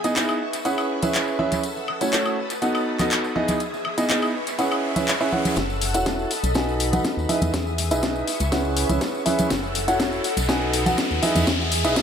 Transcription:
Already playing: string machine G#4 E5 D#6
0.04 grand piano B3 D#4 E4 G#4 D#5, closed hi-hat, tambourine
0.16 grand piano B3 D#4 E4 G#4 D#5, clap, closed hi-hat, tambourine
0.29 tambourine, high woodblock
0.40 string machine B4 C#6
0.53 closed hi-hat, tambourine
0.65 grand piano C#4 E4 G#4 B4 F#5, closed hi-hat, tambourine
0.78 tambourine, high woodblock
1.03 grand piano C#4 E4 G#4 B4 E5, closed hi-hat, tambourine, high conga
1.14 clap, closed hi-hat, tambourine
1.28 tambourine
1.39 grand piano C#4 E4 G#4 B4 E5, high conga
1.52 closed hi-hat, tambourine, high conga
1.63 string machine A4 F#5 E6, closed hi-hat, tambourine, riser
1.76 tambourine
1.88 high woodblock
2.01 grand piano A3 C#4 E4 F#4 C#5, closed hi-hat, tambourine
2.13 grand piano A3 C#4 E4 F#4 C#5, clap, closed hi-hat, tambourine
2.26 tambourine, high woodblock
2.37 string machine B4 A5 D#6
2.50 closed hi-hat, tambourine
2.62 grand piano B3 D#4 F#4 A4 F#5, closed hi-hat, tambourine
2.75 tambourine, high woodblock
2.99 grand piano B3 D#4 F#4 A4 D#5, clap, closed hi-hat, tambourine, high conga
3.11 clap, closed hi-hat, tambourine
3.24 tambourine
3.36 grand piano B3 D#4 E4 G#4 D#5, string machine G#4 E5, high conga
3.48 closed hi-hat, tambourine, high conga
3.60 closed hi-hat, tambourine
3.74 tambourine
3.85 high woodblock
3.98 grand piano B3 D#4 E4 G#4 D#5, closed hi-hat, tambourine
4.09 grand piano B3 D#4 E4 G#4 D#5, clap, closed hi-hat, tambourine
4.22 tambourine, high woodblock
4.34 string machine B4 C#6
4.47 closed hi-hat, tambourine
4.59 grand piano C#4 E4 G#4 B4 F#5, closed hi-hat, tambourine
4.71 tambourine, high woodblock
4.96 grand piano C#4 E4 G#4 B4 E5, closed hi-hat, tambourine, high conga
5.08 clap, closed hi-hat, tambourine
5.21 grand piano C#4 E4 G#4 B4 E5, tambourine
5.32 grand piano C#4 E4 G#4 B4 F#5, high conga
5.45 closed hi-hat, tambourine, high conga
5.56 fm bass F#1, string machine A4 F#5 E6, kick, snare, closed hi-hat, tambourine, riser
5.70 tambourine
5.81 open hi-hat
5.94 fm bass E1, grand piano E4 F#4 A4 C#5 F#5, closed hi-hat, tambourine
6.06 grand piano E4 F#4 A4 C#5, kick, snare, closed hi-hat, tambourine
6.19 tambourine
6.31 string machine D#5 B5, open hi-hat
6.44 fm bass B1, closed hi-hat, tambourine
6.54 grand piano D#4 F#4 A4 B4 G#5, kick, snare, closed hi-hat, tambourine
6.68 tambourine
6.80 open hi-hat
6.93 grand piano D#4 F#4 A4 B4 F#5, closed hi-hat, tambourine, high conga
7.04 kick, snare, closed hi-hat, tambourine
7.17 fm bass D#2, tambourine
7.29 grand piano D#4 E4 G#4 B4 E5, string machine G#4 E5 D#6, open hi-hat, high conga
7.42 fm bass E2, closed hi-hat, tambourine, high conga
7.54 fm bass E2, kick, snare, closed hi-hat, tambourine
7.67 tambourine
7.78 open hi-hat
7.91 fm bass B1, grand piano D#4 E4 G#4 B4 E5, closed hi-hat, tambourine
8.03 grand piano D#4 E4 G#4 B4 E5, kick, snare, closed hi-hat, tambourine
8.16 tambourine
8.27 string machine B4 C#6, open hi-hat
8.40 fm bass C#2, closed hi-hat, tambourine
8.52 grand piano C#4 E4 G#4 B4 F#5, kick, snare, closed hi-hat, tambourine
8.65 tambourine
8.77 open hi-hat
8.89 fm bass C#2, grand piano C#4 E4 G#4 B4 E5, closed hi-hat, tambourine, high conga
9.01 kick, snare, closed hi-hat, tambourine
9.14 tambourine
9.26 grand piano C#4 E4 G#4 B4 E5, open hi-hat, high conga
9.39 closed hi-hat, tambourine, high conga
9.50 fm bass F#1, string machine A4 F#5 E6, kick, snare, closed hi-hat, tambourine
9.63 tambourine
9.75 open hi-hat
9.88 fm bass E1, grand piano E4 F#4 A4 C#5 F#5, closed hi-hat, tambourine
10.00 grand piano E4 A4 C#5, kick, snare, closed hi-hat, tambourine
10.12 tambourine
10.24 string machine D#5 B5, open hi-hat
10.37 fm bass B1, closed hi-hat, tambourine
10.49 grand piano D#4 F#4 A4 B4 G#5, kick, snare, closed hi-hat, tambourine
10.61 tambourine
10.73 open hi-hat
10.86 grand piano D#4 F#4 A4 B4 F#5, closed hi-hat, tambourine, high conga
10.98 kick, snare, closed hi-hat, tambourine
11.11 fm bass D#2, tambourine
11.22 grand piano D#4 E4 G#4 B4 E5, string machine G#4 E5 D#6, open hi-hat, high conga
11.35 fm bass E2, closed hi-hat, tambourine, high conga
11.47 fm bass E2, kick, snare, closed hi-hat, tambourine
11.60 tambourine
11.72 open hi-hat
11.84 fm bass B1, grand piano D#4 E4 G#4 B4 E5, closed hi-hat, tambourine
11.96 grand piano D#4 E4 B4, kick, snare, closed hi-hat, tambourine

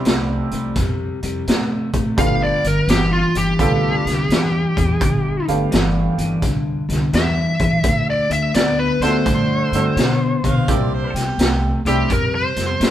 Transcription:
Already playing: upright piano G3 C4 D4 E4 G4
0.05 upright bass C2, clean electric guitar C3 A3, snare, closed hi-hat
0.51 upright bass C2, clean electric guitar C3 A3, closed hi-hat
0.76 upright bass F2, clean electric guitar C3 G3, kick, snare, closed hi-hat
1.23 upright bass F2, clean electric guitar C3 G3, closed hi-hat
1.47 upright bass A2, clean electric guitar C3 A3, snare, closed hi-hat
1.93 upright bass A2, clean electric guitar C3 A3, kick, closed hi-hat
2.17 upright bass G1, clean electric guitar G2 D3, upright piano A3 B3 D4 F4 G4, lead electric guitar F5, kick, closed hi-hat
2.43 lead electric guitar D5
2.64 upright bass G1, clean electric guitar G2 D3, lead electric guitar A#4, closed hi-hat
2.87 upright bass G1, clean electric guitar G2 E3, lead electric guitar G4, snare, closed hi-hat
3.13 lead electric guitar F4
3.34 upright bass G1, clean electric guitar G2 E3, lead electric guitar G4, closed hi-hat
3.59 upright bass C2, clean electric guitar G2 D3, upright piano A3 B3 D4 F4 A4, kick, closed hi-hat
4.05 upright bass C2, clean electric guitar G2 D3, snare, closed hi-hat
4.29 upright bass E2, clean electric guitar G2 E3, snare, closed hi-hat
4.77 upright bass E2, clean electric guitar G2 E3, kick, closed hi-hat
5.01 upright bass G1, clean electric guitar G2 D3, kick, closed hi-hat
5.47 upright bass G1, clean electric guitar G2 D3, upright piano A3 B3 D4 G4 F5, closed hi-hat
5.71 upright bass G1, clean electric guitar G2 E3, snare, closed hi-hat
6.18 upright bass G1, clean electric guitar G2 E3, closed hi-hat
6.42 upright bass C2, clean electric guitar G2 D3, kick, snare, closed hi-hat
6.89 upright bass C2, clean electric guitar G2 D3, snare, closed hi-hat
7.13 upright bass E2, clean electric guitar G2 E3, lead electric guitar E5, snare, closed hi-hat
7.59 upright bass E2, clean electric guitar G2 E3, kick, closed hi-hat
7.83 upright bass D2, clean electric guitar D3 A3, kick, closed hi-hat
8.10 lead electric guitar D5
8.29 upright bass D2, clean electric guitar D3 A3, lead electric guitar E5, closed hi-hat
8.54 upright bass D2, clean electric guitar D3 B3, lead electric guitar D5, snare, closed hi-hat
8.79 lead electric guitar B4
9.00 upright bass D2, clean electric guitar D3 B3, upright piano A3 D4 E4 F#4, lead electric guitar C5, snare, closed hi-hat
9.26 upright bass G2, clean electric guitar D3 A3, kick, snare, closed hi-hat
9.72 upright bass G2, clean electric guitar D3 A3, upright piano A3 C4 D4 E4 F#4, closed hi-hat
9.96 upright bass B2, clean electric guitar D3 B3, snare, closed hi-hat
10.44 upright bass B2, clean electric guitar D3 B3, harmonica F5, kick, closed hi-hat
10.68 upright bass C2, clean electric guitar C3 G3, upright piano A#3 C4 D4 E4 G4, harmonica D5, kick, closed hi-hat
10.94 harmonica C5
11.14 upright bass C2, clean electric guitar C3 G3, harmonica G4, snare, closed hi-hat
11.38 upright bass C2, clean electric guitar C3 A3, snare, closed hi-hat
11.85 upright bass C2, clean electric guitar C3 A3, upright piano G3 C4 D4 E4 G4, lead electric guitar G4, closed hi-hat
12.10 upright bass F2, clean electric guitar C3 G3, lead electric guitar A#4, kick, closed hi-hat
12.35 lead electric guitar C5
12.56 upright bass F2, clean electric guitar C3 G3, snare, closed hi-hat
12.80 upright bass A2, clean electric guitar C3 A3, snare, closed hi-hat

